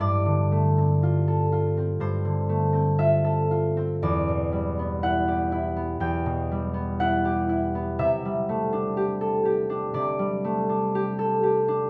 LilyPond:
\new Staff \with { instrumentName = "Harp" } { \time 4/4 \key g \major \tempo 4 = 61 << { d''2 c''4 e''4 | d''4 fis''4 g''4 fis''4 | e''2 d''2 | } \\ { <g, g'>16 d16 a16 c'16 f'16 a'16 f'16 c'16 g,16 d16 a16 c'16 f'16 a'16 f'16 c'16 | e,16 b,16 g16 b16 e'16 g'16 e'16 b16 e,16 b,16 g16 b16 e'16 g'16 e'16 b16 | c16 g16 a16 d'16 g'16 a'16 g'16 d'16 c16 g16 a16 d'16 g'16 a'16 g'16 d'16 | } >> }